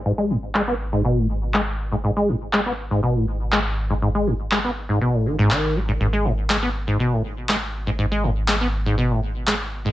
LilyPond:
<<
  \new Staff \with { instrumentName = "Acid bass" } { \clef bass \time 4/4 \key gis \phrygian \tempo 4 = 121 gis,16 gis16 gis,16 r16 gis16 b16 r16 gis,16 b,16 a,16 r8 gis16 r8 gis,16 | gis,16 gis16 gis,16 r16 gis16 b16 r16 gis,16 b,16 a,16 r8 gis16 r8 gis,16 | gis,16 gis16 gis,16 r16 gis16 b16 r16 gis,16 b,16 a,16 dis16 gis,16 dis8 gis16 gis,16 | gis,16 gis16 gis,16 r16 gis16 b16 r16 gis,16 b,16 a,16 r8 gis16 r8 gis,16 |
gis,16 gis16 gis,16 r16 gis16 b16 r16 gis,16 b,16 a,16 r8 gis16 r8 gis,16 | }
  \new Staff \with { instrumentName = "Analog synth bass" } { \clef bass \time 4/4 \key gis \phrygian gis,,1~ | gis,,1~ | gis,,1 | gis,,1~ |
gis,,1 | }
  \new DrumStaff \with { instrumentName = "Drums" } \drummode { \time 4/4 r4 hc4 r4 hc4 | r4 hc4 r4 hc4 | r4 hc4 r4 hc4 | r4 hc4 r4 hc4 |
r4 hc4 r4 hc4 | }
>>